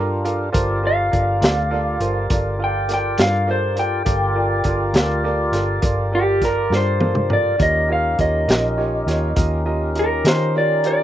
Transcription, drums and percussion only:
0.25 closed hi-hat soft
0.54 kick medium
0.54 closed hi-hat medium
1.13 kick medium
1.13 closed hi-hat medium
1.42 snare medium
1.42 closed hi-hat medium
2.00 closed hi-hat medium
2.30 kick loud
2.30 closed hi-hat medium
2.89 snare soft
2.89 closed hi-hat soft
3.18 snare medium
3.18 closed hi-hat medium
3.77 closed hi-hat soft
4.06 kick medium
4.06 closed hi-hat medium
4.64 kick medium
4.64 closed hi-hat medium
4.94 snare medium
4.94 closed hi-hat medium
5.53 snare soft
5.53 closed hi-hat medium
5.82 kick medium
5.82 closed hi-hat medium
6.42 kick medium
6.42 snare soft
6.42 closed hi-hat soft
6.73 snare medium
7.01 high tom medium
7.15 mid tom medium
7.30 mid tom medium
7.60 kick medium
7.60 closed hi-hat medium
8.19 kick medium
8.19 closed hi-hat soft
8.49 snare medium
8.49 closed hi-hat medium
9.08 snare soft
9.08 closed hi-hat medium
9.36 kick loud
9.36 closed hi-hat medium
9.95 closed hi-hat soft
10.25 snare medium
10.25 closed hi-hat medium
10.84 closed hi-hat medium

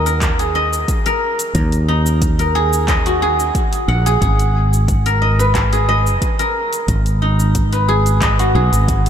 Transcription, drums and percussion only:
0.06 cabasa medium
0.22 kick loud
0.22 clap medium
0.22 closed hi-hat medium
0.22 cabasa medium
0.39 closed hi-hat soft
0.39 cabasa soft
0.73 cabasa medium
0.88 kick loud
0.88 closed hi-hat medium
0.88 cabasa medium
1.06 closed hi-hat soft
1.06 cabasa soft
1.39 closed hi-hat soft
1.39 cabasa medium
1.55 kick loud
1.55 closed hi-hat medium
1.55 cabasa medium
1.72 closed hi-hat soft
1.72 cabasa soft
2.06 cabasa medium
2.21 kick loud
2.21 closed hi-hat medium
2.21 cabasa medium
2.39 closed hi-hat soft
2.39 cabasa soft
2.73 cabasa medium
2.88 kick loud
2.88 clap medium
2.88 closed hi-hat medium
2.88 cabasa medium
3.06 closed hi-hat soft
3.06 cabasa soft
3.40 cabasa medium
3.55 kick loud
3.55 closed hi-hat medium
3.55 cabasa medium
3.73 closed hi-hat soft
3.73 cabasa soft
4.06 closed hi-hat soft
4.06 cabasa medium
4.21 kick medium
4.21 closed hi-hat medium
4.21 cabasa medium
4.39 closed hi-hat soft
4.39 cabasa soft
4.73 cabasa medium
4.88 kick loud
4.88 closed hi-hat medium
4.88 cabasa medium
5.06 closed hi-hat soft
5.06 cabasa soft
5.40 cabasa medium
5.55 kick loud
5.55 clap medium
5.55 closed hi-hat medium
5.55 cabasa medium
5.73 closed hi-hat soft
5.73 cabasa soft
6.07 cabasa medium
6.22 kick medium
6.22 closed hi-hat medium
6.22 cabasa medium
6.39 closed hi-hat soft
6.39 cabasa soft
6.73 closed hi-hat soft
6.73 cabasa medium
6.88 kick loud
6.88 closed hi-hat medium
6.88 cabasa medium
7.06 closed hi-hat soft
7.06 cabasa soft
7.40 cabasa medium
7.55 kick loud
7.55 closed hi-hat medium
7.55 cabasa medium
7.73 closed hi-hat soft
7.73 cabasa soft
8.06 closed hi-hat soft
8.06 cabasa medium
8.21 kick loud
8.21 clap medium
8.21 closed hi-hat medium
8.21 cabasa medium
8.39 closed hi-hat soft
8.39 cabasa soft
8.73 closed hi-hat soft
8.73 cabasa medium
8.88 kick loud
8.88 closed hi-hat medium
8.88 cabasa medium
9.06 closed hi-hat soft

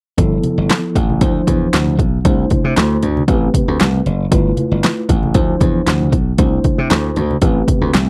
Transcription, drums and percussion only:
0.18 kick loud
0.18 closed hi-hat medium
0.18 muted conga soft
0.18 low conga medium
0.43 closed hi-hat medium
0.43 muted conga soft
0.43 high conga medium
0.70 snare loud
0.70 clap medium
0.70 closed hi-hat medium
0.70 muted conga soft
0.96 kick medium
0.96 closed hi-hat medium
0.96 muted conga soft
0.96 low conga medium
1.10 high conga medium
1.21 kick loud
1.21 closed hi-hat medium
1.21 low conga medium
1.47 kick medium
1.47 closed hi-hat medium
1.47 muted conga soft
1.47 high conga medium
1.73 snare loud
1.73 clap medium
1.73 closed hi-hat medium
1.73 muted conga soft
1.86 high conga soft
1.99 kick medium
1.99 closed hi-hat medium
1.99 muted conga soft
2.25 kick loud
2.25 closed hi-hat medium
2.25 low conga medium
2.50 kick medium
2.50 closed hi-hat medium
2.50 muted conga soft
2.50 high conga medium
2.77 snare loud
2.77 clap medium
2.77 closed hi-hat medium
3.03 closed hi-hat medium
3.03 low conga medium
3.17 high conga medium
3.28 kick loud
3.28 closed hi-hat medium
3.28 muted conga soft
3.28 low conga medium
3.54 kick medium
3.54 closed hi-hat medium
3.54 muted conga soft
3.54 high conga medium
3.80 snare loud
3.80 clap medium
3.80 closed hi-hat medium
3.93 high conga soft
4.06 closed hi-hat medium
4.06 muted conga soft
4.32 kick loud
4.32 closed hi-hat loud
4.32 muted conga soft
4.32 low conga medium
4.57 closed hi-hat medium
4.57 muted conga soft
4.57 high conga medium
4.83 snare loud
4.83 clap medium
4.83 closed hi-hat medium
4.83 muted conga soft
5.09 kick medium
5.09 closed hi-hat medium
5.09 muted conga soft
5.09 low conga medium
5.23 high conga medium
5.34 kick loud
5.34 closed hi-hat medium
5.34 muted conga soft
5.34 low conga medium
5.60 kick medium
5.60 closed hi-hat medium
5.60 muted conga soft
5.60 high conga medium
5.87 snare medium
5.87 clap medium
5.87 closed hi-hat medium
5.87 muted conga soft
6.00 high conga medium
6.12 kick medium
6.12 closed hi-hat medium
6.38 kick loud
6.38 closed hi-hat loud
6.38 low conga medium
6.64 kick medium
6.64 closed hi-hat medium
6.64 high conga medium
6.90 snare loud
6.90 clap medium
6.90 closed hi-hat medium
6.90 muted conga soft
7.16 closed hi-hat medium
7.16 muted conga soft
7.16 low conga medium
7.31 high conga medium
7.42 kick loud
7.42 closed hi-hat medium
7.42 muted conga soft
7.42 low conga medium
7.68 kick medium
7.68 closed hi-hat medium
7.68 high conga medium
7.94 snare loud
7.94 clap medium
7.94 closed hi-hat medium
7.94 muted conga soft

